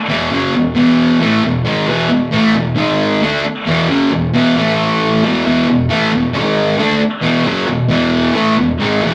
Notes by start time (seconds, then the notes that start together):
0.09 E2 B2 E3
0.32 F#2 C#3 F#3
0.55 E2 B2
0.75 E2 B2 E3
1.20 A2 E3 A3
1.43 E2 B2
1.65 G#2 D#3 G#3
1.87 E2 B2 E3
2.09 E2 B2
2.31 A2 E3 A3
2.54 E2 B2
2.76 G#2 D#3 G#3
3.22 D3 A3 D4
3.45 muted distorted electric guitar stroke
3.66 E2 B2 E3
3.89 F#2 C#3 F#3
4.11 E2 B2
4.33 E2 B2 E3
4.57 A2 E3 A3
5.22 E2 B2 E3
5.45 E2 B2 E3
5.67 E2 B2
5.89 A2 E3 A3
6.12 E2 B2
6.34 G#2 D#3 G#3
6.78 D3 A3 D4
7.01 muted distorted electric guitar stroke
7.22 E2 B2 E3
7.45 F#2 C#3 F#3
7.67 E2 B2
7.89 E2 B2 E3
8.34 A2 E3 A3
8.57 E2 B2
8.80 G#2 D#3 G#3
9.02 E2 B2 E3